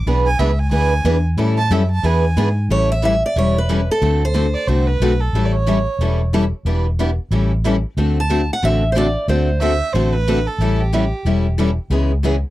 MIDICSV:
0, 0, Header, 1, 6, 480
1, 0, Start_track
1, 0, Tempo, 329128
1, 96, Time_signature, 4, 2, 24, 8
1, 18233, End_track
2, 0, Start_track
2, 0, Title_t, "Violin"
2, 0, Program_c, 0, 40
2, 383, Note_on_c, 0, 80, 103
2, 574, Note_on_c, 0, 76, 76
2, 596, Note_off_c, 0, 80, 0
2, 860, Note_on_c, 0, 80, 94
2, 882, Note_off_c, 0, 76, 0
2, 1038, Note_off_c, 0, 80, 0
2, 1047, Note_on_c, 0, 80, 103
2, 1762, Note_off_c, 0, 80, 0
2, 2301, Note_on_c, 0, 81, 109
2, 2512, Note_on_c, 0, 76, 79
2, 2534, Note_off_c, 0, 81, 0
2, 2781, Note_off_c, 0, 76, 0
2, 2790, Note_on_c, 0, 81, 104
2, 2996, Note_on_c, 0, 80, 92
2, 3018, Note_off_c, 0, 81, 0
2, 3751, Note_off_c, 0, 80, 0
2, 6623, Note_on_c, 0, 74, 92
2, 6822, Note_on_c, 0, 72, 93
2, 6843, Note_off_c, 0, 74, 0
2, 7099, Note_on_c, 0, 71, 101
2, 7121, Note_off_c, 0, 72, 0
2, 7587, Note_on_c, 0, 69, 92
2, 7609, Note_off_c, 0, 71, 0
2, 7949, Note_on_c, 0, 74, 65
2, 7971, Note_off_c, 0, 69, 0
2, 8055, Note_on_c, 0, 73, 91
2, 8077, Note_off_c, 0, 74, 0
2, 9020, Note_off_c, 0, 73, 0
2, 14013, Note_on_c, 0, 76, 104
2, 14483, Note_on_c, 0, 72, 92
2, 14505, Note_off_c, 0, 76, 0
2, 14787, Note_on_c, 0, 71, 99
2, 14808, Note_off_c, 0, 72, 0
2, 15266, Note_on_c, 0, 69, 86
2, 15288, Note_off_c, 0, 71, 0
2, 15757, Note_on_c, 0, 67, 77
2, 15779, Note_off_c, 0, 69, 0
2, 16707, Note_off_c, 0, 67, 0
2, 18233, End_track
3, 0, Start_track
3, 0, Title_t, "Steel-string acoustic guitar"
3, 0, Program_c, 1, 25
3, 3960, Note_on_c, 1, 73, 95
3, 4241, Note_off_c, 1, 73, 0
3, 4254, Note_on_c, 1, 76, 83
3, 4434, Note_off_c, 1, 76, 0
3, 4452, Note_on_c, 1, 76, 90
3, 4700, Note_off_c, 1, 76, 0
3, 4751, Note_on_c, 1, 74, 86
3, 4910, Note_off_c, 1, 74, 0
3, 4936, Note_on_c, 1, 73, 90
3, 5209, Note_off_c, 1, 73, 0
3, 5226, Note_on_c, 1, 71, 75
3, 5698, Note_off_c, 1, 71, 0
3, 5708, Note_on_c, 1, 69, 86
3, 6179, Note_off_c, 1, 69, 0
3, 6196, Note_on_c, 1, 72, 72
3, 6800, Note_off_c, 1, 72, 0
3, 11959, Note_on_c, 1, 81, 93
3, 12424, Note_off_c, 1, 81, 0
3, 12441, Note_on_c, 1, 78, 88
3, 12596, Note_off_c, 1, 78, 0
3, 12613, Note_on_c, 1, 76, 93
3, 12965, Note_off_c, 1, 76, 0
3, 13011, Note_on_c, 1, 72, 63
3, 13075, Note_off_c, 1, 72, 0
3, 13092, Note_on_c, 1, 74, 85
3, 13522, Note_off_c, 1, 74, 0
3, 13554, Note_on_c, 1, 72, 73
3, 14256, Note_off_c, 1, 72, 0
3, 18233, End_track
4, 0, Start_track
4, 0, Title_t, "Steel-string acoustic guitar"
4, 0, Program_c, 2, 25
4, 99, Note_on_c, 2, 52, 56
4, 103, Note_on_c, 2, 59, 61
4, 108, Note_on_c, 2, 62, 71
4, 109, Note_on_c, 2, 68, 69
4, 114, Note_on_c, 2, 71, 70
4, 388, Note_off_c, 2, 52, 0
4, 390, Note_off_c, 2, 59, 0
4, 392, Note_off_c, 2, 62, 0
4, 393, Note_off_c, 2, 68, 0
4, 395, Note_off_c, 2, 71, 0
4, 570, Note_on_c, 2, 52, 81
4, 570, Note_on_c, 2, 59, 87
4, 576, Note_on_c, 2, 71, 95
4, 578, Note_on_c, 2, 62, 86
4, 579, Note_on_c, 2, 68, 88
4, 728, Note_off_c, 2, 52, 0
4, 728, Note_off_c, 2, 59, 0
4, 731, Note_off_c, 2, 71, 0
4, 732, Note_off_c, 2, 62, 0
4, 733, Note_off_c, 2, 68, 0
4, 1036, Note_on_c, 2, 52, 77
4, 1042, Note_on_c, 2, 59, 63
4, 1042, Note_on_c, 2, 62, 69
4, 1046, Note_on_c, 2, 68, 77
4, 1051, Note_on_c, 2, 71, 74
4, 1336, Note_off_c, 2, 52, 0
4, 1339, Note_off_c, 2, 62, 0
4, 1340, Note_off_c, 2, 59, 0
4, 1341, Note_off_c, 2, 68, 0
4, 1344, Note_off_c, 2, 71, 0
4, 1528, Note_on_c, 2, 52, 82
4, 1530, Note_on_c, 2, 59, 85
4, 1530, Note_on_c, 2, 62, 92
4, 1538, Note_on_c, 2, 68, 93
4, 1541, Note_on_c, 2, 71, 104
4, 1687, Note_off_c, 2, 52, 0
4, 1688, Note_off_c, 2, 59, 0
4, 1688, Note_off_c, 2, 62, 0
4, 1692, Note_off_c, 2, 68, 0
4, 1694, Note_off_c, 2, 71, 0
4, 2004, Note_on_c, 2, 52, 59
4, 2008, Note_on_c, 2, 55, 65
4, 2012, Note_on_c, 2, 61, 67
4, 2013, Note_on_c, 2, 69, 76
4, 2014, Note_on_c, 2, 64, 69
4, 2300, Note_off_c, 2, 52, 0
4, 2302, Note_off_c, 2, 55, 0
4, 2304, Note_off_c, 2, 61, 0
4, 2305, Note_off_c, 2, 69, 0
4, 2306, Note_off_c, 2, 64, 0
4, 2487, Note_on_c, 2, 52, 72
4, 2494, Note_on_c, 2, 55, 89
4, 2498, Note_on_c, 2, 64, 82
4, 2500, Note_on_c, 2, 61, 89
4, 2500, Note_on_c, 2, 69, 90
4, 2647, Note_off_c, 2, 52, 0
4, 2650, Note_off_c, 2, 55, 0
4, 2652, Note_off_c, 2, 64, 0
4, 2653, Note_off_c, 2, 61, 0
4, 2653, Note_off_c, 2, 69, 0
4, 2964, Note_on_c, 2, 52, 68
4, 2966, Note_on_c, 2, 59, 69
4, 2975, Note_on_c, 2, 68, 75
4, 2976, Note_on_c, 2, 62, 67
4, 2980, Note_on_c, 2, 71, 77
4, 3261, Note_off_c, 2, 52, 0
4, 3262, Note_off_c, 2, 59, 0
4, 3266, Note_off_c, 2, 62, 0
4, 3266, Note_off_c, 2, 68, 0
4, 3268, Note_off_c, 2, 71, 0
4, 3451, Note_on_c, 2, 52, 90
4, 3455, Note_on_c, 2, 59, 82
4, 3455, Note_on_c, 2, 62, 81
4, 3461, Note_on_c, 2, 71, 97
4, 3463, Note_on_c, 2, 68, 91
4, 3609, Note_off_c, 2, 52, 0
4, 3611, Note_off_c, 2, 59, 0
4, 3611, Note_off_c, 2, 62, 0
4, 3614, Note_off_c, 2, 71, 0
4, 3615, Note_off_c, 2, 68, 0
4, 3942, Note_on_c, 2, 52, 60
4, 3944, Note_on_c, 2, 55, 56
4, 3948, Note_on_c, 2, 61, 63
4, 3949, Note_on_c, 2, 69, 59
4, 3952, Note_on_c, 2, 64, 62
4, 4230, Note_off_c, 2, 52, 0
4, 4231, Note_off_c, 2, 55, 0
4, 4233, Note_off_c, 2, 61, 0
4, 4233, Note_off_c, 2, 69, 0
4, 4235, Note_off_c, 2, 64, 0
4, 4407, Note_on_c, 2, 52, 82
4, 4410, Note_on_c, 2, 55, 76
4, 4417, Note_on_c, 2, 61, 78
4, 4419, Note_on_c, 2, 64, 76
4, 4422, Note_on_c, 2, 69, 79
4, 4567, Note_off_c, 2, 52, 0
4, 4569, Note_off_c, 2, 55, 0
4, 4572, Note_off_c, 2, 61, 0
4, 4573, Note_off_c, 2, 64, 0
4, 4575, Note_off_c, 2, 69, 0
4, 4895, Note_on_c, 2, 52, 63
4, 4900, Note_on_c, 2, 55, 66
4, 4905, Note_on_c, 2, 61, 74
4, 4905, Note_on_c, 2, 64, 68
4, 4908, Note_on_c, 2, 69, 69
4, 5187, Note_off_c, 2, 52, 0
4, 5189, Note_off_c, 2, 55, 0
4, 5192, Note_off_c, 2, 61, 0
4, 5192, Note_off_c, 2, 64, 0
4, 5193, Note_off_c, 2, 69, 0
4, 5379, Note_on_c, 2, 55, 75
4, 5381, Note_on_c, 2, 52, 81
4, 5385, Note_on_c, 2, 61, 90
4, 5394, Note_on_c, 2, 69, 82
4, 5396, Note_on_c, 2, 64, 82
4, 5534, Note_off_c, 2, 55, 0
4, 5535, Note_off_c, 2, 52, 0
4, 5537, Note_off_c, 2, 61, 0
4, 5541, Note_off_c, 2, 69, 0
4, 5542, Note_off_c, 2, 64, 0
4, 5856, Note_on_c, 2, 50, 66
4, 5860, Note_on_c, 2, 57, 62
4, 5865, Note_on_c, 2, 60, 63
4, 5866, Note_on_c, 2, 69, 75
4, 5869, Note_on_c, 2, 66, 63
4, 6148, Note_off_c, 2, 50, 0
4, 6149, Note_off_c, 2, 57, 0
4, 6152, Note_off_c, 2, 60, 0
4, 6153, Note_off_c, 2, 69, 0
4, 6154, Note_off_c, 2, 66, 0
4, 6325, Note_on_c, 2, 50, 75
4, 6333, Note_on_c, 2, 57, 71
4, 6335, Note_on_c, 2, 60, 83
4, 6336, Note_on_c, 2, 66, 71
4, 6340, Note_on_c, 2, 69, 88
4, 6487, Note_off_c, 2, 50, 0
4, 6491, Note_off_c, 2, 57, 0
4, 6492, Note_off_c, 2, 60, 0
4, 6492, Note_off_c, 2, 66, 0
4, 6495, Note_off_c, 2, 69, 0
4, 6822, Note_on_c, 2, 50, 63
4, 6827, Note_on_c, 2, 60, 66
4, 6828, Note_on_c, 2, 57, 64
4, 6828, Note_on_c, 2, 66, 67
4, 6830, Note_on_c, 2, 69, 66
4, 7111, Note_off_c, 2, 50, 0
4, 7113, Note_off_c, 2, 60, 0
4, 7114, Note_off_c, 2, 57, 0
4, 7114, Note_off_c, 2, 66, 0
4, 7115, Note_off_c, 2, 69, 0
4, 7317, Note_on_c, 2, 50, 83
4, 7317, Note_on_c, 2, 57, 73
4, 7319, Note_on_c, 2, 60, 84
4, 7325, Note_on_c, 2, 66, 88
4, 7326, Note_on_c, 2, 69, 81
4, 7463, Note_off_c, 2, 50, 0
4, 7464, Note_off_c, 2, 57, 0
4, 7464, Note_off_c, 2, 60, 0
4, 7467, Note_off_c, 2, 66, 0
4, 7468, Note_off_c, 2, 69, 0
4, 7803, Note_on_c, 2, 64, 64
4, 7804, Note_on_c, 2, 52, 60
4, 7805, Note_on_c, 2, 55, 59
4, 7805, Note_on_c, 2, 61, 58
4, 7813, Note_on_c, 2, 69, 74
4, 8082, Note_off_c, 2, 52, 0
4, 8082, Note_off_c, 2, 61, 0
4, 8082, Note_off_c, 2, 64, 0
4, 8083, Note_off_c, 2, 55, 0
4, 8087, Note_off_c, 2, 69, 0
4, 8271, Note_on_c, 2, 52, 79
4, 8279, Note_on_c, 2, 55, 80
4, 8284, Note_on_c, 2, 61, 89
4, 8286, Note_on_c, 2, 64, 77
4, 8287, Note_on_c, 2, 69, 80
4, 8420, Note_off_c, 2, 52, 0
4, 8425, Note_off_c, 2, 55, 0
4, 8427, Note_off_c, 2, 61, 0
4, 8428, Note_off_c, 2, 64, 0
4, 8429, Note_off_c, 2, 69, 0
4, 8760, Note_on_c, 2, 52, 70
4, 8763, Note_on_c, 2, 55, 73
4, 8770, Note_on_c, 2, 64, 74
4, 8772, Note_on_c, 2, 61, 70
4, 8779, Note_on_c, 2, 69, 73
4, 9040, Note_off_c, 2, 52, 0
4, 9042, Note_off_c, 2, 55, 0
4, 9045, Note_off_c, 2, 64, 0
4, 9046, Note_off_c, 2, 61, 0
4, 9050, Note_off_c, 2, 69, 0
4, 9243, Note_on_c, 2, 52, 81
4, 9244, Note_on_c, 2, 55, 77
4, 9246, Note_on_c, 2, 61, 89
4, 9246, Note_on_c, 2, 64, 92
4, 9252, Note_on_c, 2, 69, 94
4, 9386, Note_off_c, 2, 52, 0
4, 9387, Note_off_c, 2, 55, 0
4, 9388, Note_off_c, 2, 61, 0
4, 9388, Note_off_c, 2, 64, 0
4, 9391, Note_off_c, 2, 69, 0
4, 9710, Note_on_c, 2, 52, 60
4, 9721, Note_on_c, 2, 55, 59
4, 9723, Note_on_c, 2, 62, 56
4, 9727, Note_on_c, 2, 64, 65
4, 9729, Note_on_c, 2, 71, 72
4, 9995, Note_off_c, 2, 52, 0
4, 10000, Note_off_c, 2, 55, 0
4, 10001, Note_off_c, 2, 62, 0
4, 10004, Note_off_c, 2, 64, 0
4, 10004, Note_off_c, 2, 71, 0
4, 10194, Note_on_c, 2, 52, 71
4, 10197, Note_on_c, 2, 62, 77
4, 10200, Note_on_c, 2, 55, 88
4, 10202, Note_on_c, 2, 71, 79
4, 10205, Note_on_c, 2, 64, 83
4, 10342, Note_off_c, 2, 52, 0
4, 10343, Note_off_c, 2, 62, 0
4, 10345, Note_off_c, 2, 55, 0
4, 10346, Note_off_c, 2, 71, 0
4, 10347, Note_off_c, 2, 64, 0
4, 10667, Note_on_c, 2, 52, 67
4, 10667, Note_on_c, 2, 61, 68
4, 10669, Note_on_c, 2, 55, 71
4, 10675, Note_on_c, 2, 69, 72
4, 10676, Note_on_c, 2, 64, 74
4, 10953, Note_off_c, 2, 52, 0
4, 10953, Note_off_c, 2, 61, 0
4, 10954, Note_off_c, 2, 55, 0
4, 10957, Note_off_c, 2, 69, 0
4, 10958, Note_off_c, 2, 64, 0
4, 11146, Note_on_c, 2, 52, 80
4, 11154, Note_on_c, 2, 55, 77
4, 11156, Note_on_c, 2, 61, 80
4, 11156, Note_on_c, 2, 64, 86
4, 11159, Note_on_c, 2, 69, 100
4, 11297, Note_off_c, 2, 52, 0
4, 11301, Note_off_c, 2, 55, 0
4, 11302, Note_off_c, 2, 64, 0
4, 11303, Note_off_c, 2, 61, 0
4, 11304, Note_off_c, 2, 69, 0
4, 11627, Note_on_c, 2, 50, 57
4, 11634, Note_on_c, 2, 57, 64
4, 11634, Note_on_c, 2, 60, 67
4, 11641, Note_on_c, 2, 66, 62
4, 11643, Note_on_c, 2, 69, 67
4, 11913, Note_off_c, 2, 50, 0
4, 11916, Note_off_c, 2, 60, 0
4, 11917, Note_off_c, 2, 57, 0
4, 11920, Note_off_c, 2, 66, 0
4, 11921, Note_off_c, 2, 69, 0
4, 12100, Note_on_c, 2, 50, 80
4, 12109, Note_on_c, 2, 57, 73
4, 12111, Note_on_c, 2, 60, 83
4, 12111, Note_on_c, 2, 66, 86
4, 12115, Note_on_c, 2, 69, 84
4, 12254, Note_off_c, 2, 50, 0
4, 12258, Note_off_c, 2, 57, 0
4, 12260, Note_off_c, 2, 60, 0
4, 12260, Note_off_c, 2, 66, 0
4, 12262, Note_off_c, 2, 69, 0
4, 12590, Note_on_c, 2, 50, 61
4, 12594, Note_on_c, 2, 57, 62
4, 12594, Note_on_c, 2, 60, 73
4, 12596, Note_on_c, 2, 66, 71
4, 12605, Note_on_c, 2, 69, 71
4, 12874, Note_off_c, 2, 50, 0
4, 12876, Note_off_c, 2, 57, 0
4, 12876, Note_off_c, 2, 60, 0
4, 12877, Note_off_c, 2, 66, 0
4, 12881, Note_off_c, 2, 69, 0
4, 13069, Note_on_c, 2, 50, 85
4, 13073, Note_on_c, 2, 60, 79
4, 13076, Note_on_c, 2, 57, 81
4, 13077, Note_on_c, 2, 66, 88
4, 13081, Note_on_c, 2, 69, 91
4, 13218, Note_off_c, 2, 50, 0
4, 13220, Note_off_c, 2, 60, 0
4, 13222, Note_off_c, 2, 57, 0
4, 13222, Note_off_c, 2, 66, 0
4, 13224, Note_off_c, 2, 69, 0
4, 13552, Note_on_c, 2, 60, 64
4, 13554, Note_on_c, 2, 50, 59
4, 13554, Note_on_c, 2, 57, 58
4, 13559, Note_on_c, 2, 66, 69
4, 13564, Note_on_c, 2, 69, 66
4, 13835, Note_off_c, 2, 60, 0
4, 13836, Note_off_c, 2, 50, 0
4, 13836, Note_off_c, 2, 57, 0
4, 13838, Note_off_c, 2, 66, 0
4, 13840, Note_off_c, 2, 69, 0
4, 14026, Note_on_c, 2, 50, 74
4, 14032, Note_on_c, 2, 57, 86
4, 14035, Note_on_c, 2, 60, 78
4, 14037, Note_on_c, 2, 66, 77
4, 14041, Note_on_c, 2, 69, 82
4, 14176, Note_off_c, 2, 50, 0
4, 14179, Note_off_c, 2, 57, 0
4, 14181, Note_off_c, 2, 60, 0
4, 14182, Note_off_c, 2, 66, 0
4, 14184, Note_off_c, 2, 69, 0
4, 14506, Note_on_c, 2, 50, 62
4, 14514, Note_on_c, 2, 57, 64
4, 14514, Note_on_c, 2, 60, 73
4, 14521, Note_on_c, 2, 66, 72
4, 14522, Note_on_c, 2, 69, 75
4, 14791, Note_off_c, 2, 50, 0
4, 14795, Note_off_c, 2, 57, 0
4, 14795, Note_off_c, 2, 60, 0
4, 14799, Note_off_c, 2, 66, 0
4, 14799, Note_off_c, 2, 69, 0
4, 14986, Note_on_c, 2, 50, 82
4, 14987, Note_on_c, 2, 60, 89
4, 14991, Note_on_c, 2, 57, 92
4, 14994, Note_on_c, 2, 66, 90
4, 14995, Note_on_c, 2, 69, 89
4, 15136, Note_off_c, 2, 50, 0
4, 15136, Note_off_c, 2, 60, 0
4, 15138, Note_off_c, 2, 57, 0
4, 15140, Note_off_c, 2, 66, 0
4, 15140, Note_off_c, 2, 69, 0
4, 15464, Note_on_c, 2, 52, 59
4, 15467, Note_on_c, 2, 55, 65
4, 15469, Note_on_c, 2, 61, 65
4, 15474, Note_on_c, 2, 64, 65
4, 15482, Note_on_c, 2, 69, 71
4, 15749, Note_off_c, 2, 52, 0
4, 15751, Note_off_c, 2, 55, 0
4, 15752, Note_off_c, 2, 61, 0
4, 15754, Note_off_c, 2, 64, 0
4, 15758, Note_off_c, 2, 69, 0
4, 15947, Note_on_c, 2, 55, 78
4, 15950, Note_on_c, 2, 52, 87
4, 15952, Note_on_c, 2, 61, 78
4, 15953, Note_on_c, 2, 64, 88
4, 15957, Note_on_c, 2, 69, 81
4, 16096, Note_off_c, 2, 55, 0
4, 16097, Note_off_c, 2, 52, 0
4, 16098, Note_off_c, 2, 61, 0
4, 16099, Note_off_c, 2, 64, 0
4, 16101, Note_off_c, 2, 69, 0
4, 16424, Note_on_c, 2, 52, 64
4, 16428, Note_on_c, 2, 55, 63
4, 16434, Note_on_c, 2, 61, 68
4, 16434, Note_on_c, 2, 64, 69
4, 16439, Note_on_c, 2, 69, 63
4, 16709, Note_off_c, 2, 52, 0
4, 16711, Note_off_c, 2, 55, 0
4, 16714, Note_off_c, 2, 61, 0
4, 16714, Note_off_c, 2, 64, 0
4, 16716, Note_off_c, 2, 69, 0
4, 16906, Note_on_c, 2, 52, 79
4, 16907, Note_on_c, 2, 55, 80
4, 16908, Note_on_c, 2, 61, 74
4, 16917, Note_on_c, 2, 64, 92
4, 16917, Note_on_c, 2, 69, 83
4, 17055, Note_off_c, 2, 52, 0
4, 17055, Note_off_c, 2, 55, 0
4, 17056, Note_off_c, 2, 61, 0
4, 17060, Note_off_c, 2, 64, 0
4, 17060, Note_off_c, 2, 69, 0
4, 17378, Note_on_c, 2, 49, 60
4, 17384, Note_on_c, 2, 56, 63
4, 17389, Note_on_c, 2, 64, 66
4, 17391, Note_on_c, 2, 59, 69
4, 17391, Note_on_c, 2, 68, 68
4, 17665, Note_off_c, 2, 49, 0
4, 17668, Note_off_c, 2, 56, 0
4, 17671, Note_off_c, 2, 64, 0
4, 17672, Note_off_c, 2, 59, 0
4, 17672, Note_off_c, 2, 68, 0
4, 17858, Note_on_c, 2, 49, 77
4, 17861, Note_on_c, 2, 56, 72
4, 17862, Note_on_c, 2, 59, 79
4, 17866, Note_on_c, 2, 64, 88
4, 17870, Note_on_c, 2, 68, 89
4, 18010, Note_off_c, 2, 49, 0
4, 18011, Note_off_c, 2, 56, 0
4, 18012, Note_off_c, 2, 59, 0
4, 18014, Note_off_c, 2, 64, 0
4, 18016, Note_off_c, 2, 68, 0
4, 18233, End_track
5, 0, Start_track
5, 0, Title_t, "Steel-string acoustic guitar"
5, 0, Program_c, 3, 25
5, 9712, Note_on_c, 3, 59, 67
5, 9721, Note_on_c, 3, 67, 76
5, 9996, Note_off_c, 3, 59, 0
5, 10001, Note_off_c, 3, 67, 0
5, 10211, Note_on_c, 3, 59, 91
5, 10212, Note_on_c, 3, 67, 83
5, 10350, Note_off_c, 3, 59, 0
5, 10351, Note_off_c, 3, 67, 0
5, 17363, Note_on_c, 3, 52, 72
5, 17365, Note_on_c, 3, 61, 81
5, 17658, Note_off_c, 3, 52, 0
5, 17659, Note_off_c, 3, 61, 0
5, 17849, Note_on_c, 3, 52, 86
5, 17854, Note_on_c, 3, 61, 95
5, 18006, Note_off_c, 3, 52, 0
5, 18008, Note_off_c, 3, 61, 0
5, 18233, End_track
6, 0, Start_track
6, 0, Title_t, "Fingered electric bass"
6, 0, Program_c, 4, 33
6, 94, Note_on_c, 4, 35, 85
6, 560, Note_off_c, 4, 35, 0
6, 570, Note_on_c, 4, 37, 94
6, 1035, Note_off_c, 4, 37, 0
6, 1044, Note_on_c, 4, 38, 83
6, 1515, Note_off_c, 4, 38, 0
6, 1523, Note_on_c, 4, 40, 90
6, 1990, Note_off_c, 4, 40, 0
6, 1999, Note_on_c, 4, 45, 76
6, 2473, Note_off_c, 4, 45, 0
6, 2483, Note_on_c, 4, 42, 103
6, 2955, Note_off_c, 4, 42, 0
6, 2966, Note_on_c, 4, 40, 87
6, 3437, Note_off_c, 4, 40, 0
6, 3452, Note_on_c, 4, 44, 91
6, 3916, Note_off_c, 4, 44, 0
6, 3925, Note_on_c, 4, 33, 78
6, 4698, Note_off_c, 4, 33, 0
6, 4899, Note_on_c, 4, 28, 83
6, 5667, Note_off_c, 4, 28, 0
6, 5858, Note_on_c, 4, 38, 81
6, 6627, Note_off_c, 4, 38, 0
6, 6817, Note_on_c, 4, 36, 78
6, 7226, Note_off_c, 4, 36, 0
6, 7293, Note_on_c, 4, 35, 76
6, 7704, Note_off_c, 4, 35, 0
6, 7774, Note_on_c, 4, 33, 83
6, 8544, Note_off_c, 4, 33, 0
6, 8731, Note_on_c, 4, 28, 81
6, 9502, Note_off_c, 4, 28, 0
6, 9698, Note_on_c, 4, 28, 84
6, 10466, Note_off_c, 4, 28, 0
6, 10656, Note_on_c, 4, 33, 86
6, 11425, Note_off_c, 4, 33, 0
6, 11620, Note_on_c, 4, 38, 77
6, 12387, Note_off_c, 4, 38, 0
6, 12584, Note_on_c, 4, 33, 84
6, 13349, Note_off_c, 4, 33, 0
6, 13532, Note_on_c, 4, 38, 80
6, 14301, Note_off_c, 4, 38, 0
6, 14499, Note_on_c, 4, 33, 81
6, 15265, Note_off_c, 4, 33, 0
6, 15437, Note_on_c, 4, 33, 83
6, 16211, Note_off_c, 4, 33, 0
6, 16406, Note_on_c, 4, 28, 84
6, 17176, Note_off_c, 4, 28, 0
6, 17355, Note_on_c, 4, 37, 83
6, 18129, Note_off_c, 4, 37, 0
6, 18233, End_track
0, 0, End_of_file